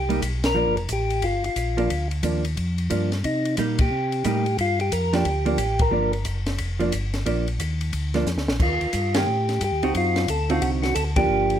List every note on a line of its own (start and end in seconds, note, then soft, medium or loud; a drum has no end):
0.00 0.21 C2 medium
0.00 0.21 G4 medium
0.09 0.20 G3 medium
0.09 0.21 A#3 medium
0.09 0.21 D#4 medium
0.09 ride soft
0.22 0.55 B1 medium
0.22 kick soft
0.22 hi-hat pedal soft
0.22 ride medium
0.44 0.76 A#4 loud
0.44 snare medium
0.44 ride medium
0.55 0.66 A#1 medium
0.55 0.74 F3 medium
0.55 0.75 A#3 medium
0.55 0.75 D4 medium
0.66 0.78 G1 medium
0.77 0.88 F1 medium
0.77 ride soft
0.89 1.22 A1 medium
0.89 1.25 G4 medium
0.89 kick soft
0.89 hi-hat pedal medium
0.89 ride medium
1.10 ride soft
1.22 1.42 G1 medium
1.22 1.44 F4 medium
1.22 kick soft
1.22 ride medium
1.43 1.50 G1 soft
1.43 2.08 F4 medium
1.43 ride soft
1.56 1.89 A#1 medium
1.56 kick soft
1.56 hi-hat pedal medium
1.56 ride medium
1.77 1.89 F3 medium
1.77 1.89 A#3 medium
1.77 1.89 D4 medium
1.77 ride soft
1.90 2.22 D2 medium
1.90 kick soft
1.90 ride medium
2.11 ride soft
2.23 2.56 D#2 medium
2.23 2.42 F3 soft
2.23 2.43 A#3 soft
2.23 2.43 D4 soft
2.23 kick soft
2.23 hi-hat pedal soft
2.23 ride medium
2.45 ride medium
2.57 2.89 F2 medium
2.57 kick soft
2.57 ride medium
2.78 ride soft
2.90 3.23 G2 medium
2.90 3.09 F3 soft
2.90 3.10 A#3 soft
2.90 3.10 D4 soft
2.90 kick soft
2.90 hi-hat pedal medium
2.90 ride medium
3.12 snare soft
3.12 ride soft
3.24 3.57 C3 medium
3.24 3.56 D#4 medium
3.24 kick soft
3.24 ride medium
3.45 ride soft
3.57 3.90 A#2 medium
3.57 3.77 G3 medium
3.57 3.77 A#3 medium
3.57 3.77 D#4 medium
3.57 kick soft
3.57 hi-hat pedal medium
3.57 ride medium
3.79 4.26 G4 medium
3.79 kick medium
3.79 ride medium
3.91 4.23 C3 medium
4.12 ride soft
4.24 4.57 A2 medium
4.24 4.44 G3 medium
4.24 4.44 A#3 medium
4.24 4.44 D#4 medium
4.24 4.57 G4 medium
4.24 kick soft
4.24 hi-hat pedal medium
4.24 ride medium
4.46 ride soft
4.58 4.91 G2 medium
4.58 4.79 F4 loud
4.58 kick soft
4.58 ride medium
4.80 4.93 G4 medium
4.80 ride soft
4.92 5.24 F2 medium
4.92 5.14 A#4 medium
4.92 kick soft
4.92 hi-hat pedal medium
4.92 ride medium
5.13 5.24 F3 medium
5.13 5.24 A#3 medium
5.13 5.24 D4 medium
5.13 5.83 G4 medium
5.13 snare soft
5.13 ride soft
5.25 5.58 D2 medium
5.25 kick soft
5.25 ride medium
5.45 5.57 F3 medium
5.45 5.57 A#3 medium
5.45 5.58 D4 medium
5.45 ride soft
5.58 5.91 A1 medium
5.58 kick soft
5.58 hi-hat pedal soft
5.58 ride medium
5.79 6.12 A#4 loud
5.79 kick medium
5.79 ride medium
5.91 6.24 G1 medium
5.91 6.11 F3 medium
5.91 6.11 A#3 medium
5.91 6.12 D4 medium
6.13 ride soft
6.25 6.58 F#1 medium
6.25 kick soft
6.25 hi-hat pedal medium
6.25 ride medium
6.46 snare medium
6.46 ride soft
6.58 6.92 F1 medium
6.58 kick soft
6.58 ride medium
6.80 6.91 F3 medium
6.80 6.91 A#3 medium
6.80 6.92 D4 medium
6.80 ride soft
6.92 7.25 G1 medium
6.92 kick soft
6.92 hi-hat pedal medium
6.92 ride medium
7.14 snare soft
7.14 ride soft
7.26 7.59 A#1 medium
7.26 7.45 F3 soft
7.26 7.45 A#3 soft
7.26 7.46 D4 medium
7.26 kick soft
7.26 ride medium
7.48 ride soft
7.59 7.92 D#2 medium
7.59 kick soft
7.59 hi-hat pedal medium
7.59 ride medium
7.81 ride medium
7.93 8.26 D2 medium
7.93 kick soft
7.93 ride medium
8.14 8.25 F3 medium
8.14 8.26 A#3 medium
8.14 8.26 D4 medium
8.14 snare soft
8.14 ride soft
8.26 8.37 F2 medium
8.26 snare soft
8.26 hi-hat pedal soft
8.37 8.48 D2 soft
8.37 snare medium
8.48 8.59 A#1 medium
8.48 snare medium
8.59 8.79 D#2 medium
8.59 9.18 F4 loud
8.59 kick medium
8.59 crash medium
8.81 8.87 D#2 soft
8.81 ride soft
8.93 9.26 G2 medium
8.93 kick soft
8.93 hi-hat pedal medium
8.93 ride medium
9.14 9.26 D#3 medium
9.14 9.26 A#3 medium
9.14 9.26 C#4 medium
9.14 9.26 G4 medium
9.14 9.63 G4 medium
9.14 snare medium
9.14 ride medium
9.27 9.59 A2 medium
9.49 snare soft
9.49 ride soft
9.61 9.71 G2 medium
9.61 9.94 G4 medium
9.61 kick soft
9.61 hi-hat pedal medium
9.61 ride medium
9.71 9.83 D#2 medium
9.83 9.93 C#2 medium
9.83 10.26 C4 medium
9.83 10.26 D#4 medium
9.83 10.26 F#4 medium
9.83 ride soft
9.94 10.27 F#2 medium
9.94 10.30 F4 loud
9.94 kick soft
9.94 ride medium
10.16 snare medium
10.16 ride soft
10.28 10.60 D2 medium
10.28 10.51 A4 medium
10.28 kick soft
10.28 hi-hat pedal medium
10.28 ride medium
10.50 10.92 D3 medium
10.50 10.93 C4 medium
10.50 10.93 D#4 medium
10.50 10.62 F4 medium
10.50 10.93 F#4 medium
10.50 ride medium
10.62 10.94 C2 medium
10.62 10.71 F#4 medium
10.62 kick soft
10.62 ride medium
10.83 10.95 F#4 medium
10.83 snare medium
10.83 ride soft
10.95 11.27 D2 medium
10.95 11.04 A4 loud
10.95 kick soft
10.95 hi-hat pedal soft
10.95 ride medium
11.16 11.59 F3 medium
11.16 11.60 A#3 medium
11.16 11.60 D4 medium
11.16 11.60 G4 loud
11.16 kick medium
11.16 ride medium
11.28 11.60 G1 medium
11.50 ride soft